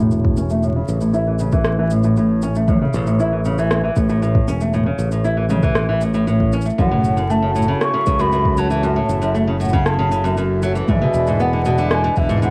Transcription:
Already playing: fingered electric bass E1
0.00 nylon-string guitar A2
0.11 nylon-string guitar A2, cabasa
0.25 kick
0.37 nylon-string guitar C#4, cabasa
0.50 nylon-string guitar A3, cabasa
0.63 nylon-string guitar A2, cabasa
0.76 nylon-string guitar C#3
0.88 fingered electric bass A1, cabasa
1.01 nylon-string guitar A2, cabasa
1.14 nylon-string guitar E4, cabasa
1.27 nylon-string guitar E3
1.39 nylon-string guitar C#3, cabasa
1.52 nylon-string guitar E3, kick, cabasa
1.64 cross-stick, cabasa
1.79 nylon-string guitar E3
1.90 nylon-string guitar A2, cabasa
2.03 nylon-string guitar A2, cabasa
2.16 nylon-string guitar A2, cabasa
2.42 nylon-string guitar C#4, cabasa
2.55 nylon-string guitar A3, cabasa
2.68 nylon-string guitar A2, kick, mid tom, cabasa
2.82 nylon-string guitar C#3
2.93 fingered electric bass A1, cabasa
3.07 nylon-string guitar A2, cabasa
3.19 nylon-string guitar E4, cabasa
3.32 nylon-string guitar E3
3.45 nylon-string guitar C#3, cabasa
3.58 nylon-string guitar E3, cabasa
3.71 cross-stick, cabasa
3.83 nylon-string guitar E3
3.96 fingered electric bass A1, nylon-string guitar A2, kick, cabasa
4.09 nylon-string guitar A2, cabasa
4.22 nylon-string guitar A2, cabasa
4.35 kick
4.48 fingered electric bass E1, nylon-string guitar C#4, cabasa
4.60 nylon-string guitar A3, cabasa
4.73 nylon-string guitar A2, cabasa
4.86 nylon-string guitar C#3
4.99 fingered electric bass A1, cabasa
5.12 nylon-string guitar A2, cabasa
5.25 nylon-string guitar E4, cabasa
5.37 nylon-string guitar E3
5.50 nylon-string guitar C#3, mid tom, cabasa
5.63 nylon-string guitar E3, kick, cabasa
5.75 cross-stick, cabasa
5.89 nylon-string guitar E3
6.01 nylon-string guitar A2, cabasa
6.14 nylon-string guitar A2, cabasa
6.27 nylon-string guitar A2, cabasa
6.40 kick
6.53 nylon-string guitar C#4, cabasa
6.61 cabasa
6.65 nylon-string guitar A3, cabasa
6.70 cabasa
6.78 fingered electric bass F#1, nylon-string guitar F#2, harmonium F#3 C#4 E4 A4, flute F#5, kick, mid tom, cabasa
6.91 nylon-string guitar A2
7.04 cabasa
7.17 nylon-string guitar F#2, cabasa
7.30 nylon-string guitar A3, flute A5, cabasa
7.42 nylon-string guitar C#3
7.55 nylon-string guitar A2, cabasa
7.62 cabasa
7.68 nylon-string guitar C#3
7.81 flute C#6, cross-stick, cabasa
7.94 nylon-string guitar C#3
8.06 fingered electric bass C#2, nylon-string guitar C#3, kick, cabasa
8.19 nylon-string guitar F#2, flute B5, cabasa
8.32 nylon-string guitar F#2, cabasa
8.45 kick
8.57 nylon-string guitar F#3, flute A5, cabasa
8.70 nylon-string guitar E3, cabasa
8.83 nylon-string guitar F#2, cabasa
8.96 nylon-string guitar A2
9.09 fingered electric bass F#1, cabasa
9.22 nylon-string guitar F#2, cabasa
9.35 nylon-string guitar A3, cabasa
9.47 nylon-string guitar C#3
9.60 nylon-string guitar A2, flute F#5, cabasa
9.65 cabasa
9.69 cabasa
9.73 nylon-string guitar C#3, kick, cabasa
9.86 flute A5, cross-stick, cabasa
9.99 nylon-string guitar C#3
10.11 nylon-string guitar C#3, cabasa
10.24 nylon-string guitar F#2, cabasa
10.37 nylon-string guitar F#2, cabasa
10.63 nylon-string guitar F#3, cabasa
10.75 nylon-string guitar E3, cabasa
10.88 nylon-string guitar G#2, harmonium G#3 D4 B4, flute E5, kick, mid tom, cabasa
11.02 nylon-string guitar B2
11.14 fingered electric bass E1, cabasa
11.27 nylon-string guitar G#2, cabasa
11.40 nylon-string guitar B3, flute F#5, cabasa
11.53 nylon-string guitar D3
11.65 nylon-string guitar B2, cabasa
11.78 nylon-string guitar D3, cabasa
11.91 flute G#5, cross-stick, cabasa
12.04 nylon-string guitar D3
12.16 fingered electric bass E1, nylon-string guitar D3, flute E5, kick, cabasa
12.29 nylon-string guitar G#2, cabasa
12.42 nylon-string guitar G#2, flute F#5, cabasa

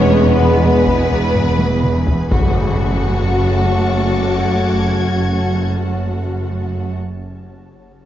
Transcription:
Already playing: double bass section E1, cello section E2, synth drone E2, trombone section B2 G#3, viola section G#3 B3, french horn section B3 B4, violin section C#4 C#5, ambient pad G#4 B4 B5
0.36 violin section B3 B4
0.87 taiko
1.11 taiko low
1.35 taiko low-mid
1.59 taiko high
1.84 taiko mid
2.07 taiko low
2.30 synth drone F#1, double bass section F#1, cello section F#2, trombone section C#3 F#3, viola section A3 F#4, french horn section A3 F#4, ambient pad C#4 F#4 A5, violin section F#4 F#5 C#6, taiko, tam-tam, impact
3.25 violin section D6
4.24 violin section G#6
5.05 violin section C#6

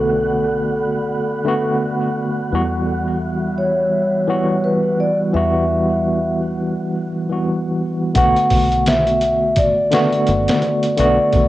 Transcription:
Already playing: fingered electric bass B1, tine electric piano D3 A3 B3 F#4, vibraphone A4, ambient pad A4 D5 F#5 B5, synth texture F#5, downlifter
1.45 tine electric piano D3 A3 B3 F#4
2.51 fingered electric bass E2, tine electric piano E3 G3 B3, ambient pad G3 E5
2.55 tine electric piano F#4
3.58 vibraphone C#5
4.27 tine electric piano E3 G3 B3 F#4
4.64 vibraphone B4
5.00 vibraphone D5
5.33 fingered electric bass E2, tine electric piano E3 G3 B3 F#4, vibraphone E5
7.29 tine electric piano E3 G3 B3 F#4
8.14 fingered electric bass B1, tine electric piano D3 A3 B3 F#4, vibraphone F#5, kick, closed hi-hat
8.36 closed hi-hat
8.50 fingered electric bass B1, kick, open hi-hat
8.72 closed hi-hat
8.86 vibraphone E5, snare, closed hi-hat
9.07 closed hi-hat
9.21 closed hi-hat
9.56 vibraphone D5, kick, closed hi-hat
9.91 tine electric piano D3 A3 B3 F#4, snare, closed hi-hat
10.12 closed hi-hat
10.27 fingered electric bass F#1, closed hi-hat
10.48 snare, closed hi-hat
10.62 closed hi-hat
10.83 closed hi-hat
10.97 fingered electric bass B1, tine electric piano D3 A3 B3 F#4, vibraphone D5, closed hi-hat
11.32 fingered electric bass B1, kick, closed hi-hat

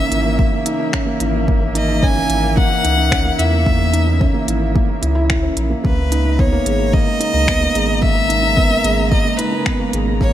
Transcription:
Already playing: string quartet C#3 E3 A#3 E5, felt piano A#3 C#4 D#4 E4, violin E5
0.11 sub bass G#1, felt piano E4, closed hi-hat
0.24 felt piano A#3
0.39 felt piano A#3, kick
0.53 felt piano A#3
0.66 felt piano D#4, closed hi-hat
0.79 felt piano D#4
0.93 felt piano C#4, finger snap, kick
1.06 felt piano A#3
1.20 sub bass G#1, felt piano E4, closed hi-hat
1.34 felt piano A#3
1.48 felt piano A#3, kick
1.61 felt piano A#3
1.75 felt piano D#4, violin D#5, closed hi-hat
1.89 felt piano D#4
2.02 felt piano C#4, violin G#5, kick
2.16 felt piano A#3
2.29 sub bass G#1, felt piano E4, closed hi-hat
2.42 felt piano A#3
2.56 felt piano A#3, violin F#5, kick
2.70 felt piano A#3
2.84 sub bass C#2, felt piano D#4, closed hi-hat
2.97 felt piano D#4
3.11 felt piano C#4, finger snap, kick
3.25 felt piano A#3
3.38 sub bass E2, felt piano E4, violin E5, closed hi-hat
3.52 felt piano A#3
3.66 felt piano A#3, kick
3.79 felt piano A#3
3.93 felt piano D#4, closed hi-hat
4.07 felt piano D#4
4.20 felt piano C#4, kick
4.34 felt piano A#3
4.47 sub bass G#1, felt piano E4, closed hi-hat
4.61 felt piano A#3
4.75 felt piano A#3, kick
4.89 felt piano A#3
5.02 sub bass C#2, felt piano E4, closed hi-hat
5.15 felt piano E4
5.29 felt piano E4, finger snap, kick
5.43 felt piano C#4
5.56 sub bass A#1, felt piano E4, closed hi-hat
5.70 felt piano A#3
5.84 sub bass C#2, string quartet C#3, felt piano A#3, violin B4, kick
5.98 felt piano A#3
6.11 string quartet G#3, felt piano D#4, closed hi-hat
6.25 felt piano D#4, string quartet A#5
6.39 felt piano B3, violin C#5, kick
6.52 felt piano A#3
6.66 sub bass G#1, felt piano G#4, closed hi-hat
6.79 felt piano A#3
6.93 felt piano A#3, violin D#5, kick
7.06 felt piano A#3
7.20 felt piano D#4, closed hi-hat
7.34 sub bass C#2, felt piano D#4
7.47 felt piano B3, finger snap, kick
7.61 felt piano A#3
7.74 sub bass G#1, felt piano G#4, closed hi-hat
7.88 felt piano A#3
8.01 felt piano A#3, violin E5, kick
8.15 felt piano A#3
8.29 felt piano D#4, closed hi-hat
8.42 felt piano D#4
8.56 felt piano B3, kick
8.70 felt piano A#3
8.84 sub bass G#1, felt piano G#4, closed hi-hat
8.98 felt piano A#3
9.11 felt piano A#3, violin D#5, kick
9.25 felt piano A#3
9.38 felt piano D#4, violin B4, closed hi-hat
9.52 felt piano D#4
9.66 felt piano B3, finger snap, kick
9.79 felt piano A#3
9.93 sub bass G#1, felt piano G#4, closed hi-hat
10.07 felt piano A#3
10.20 felt piano A#3, violin C#5, kick

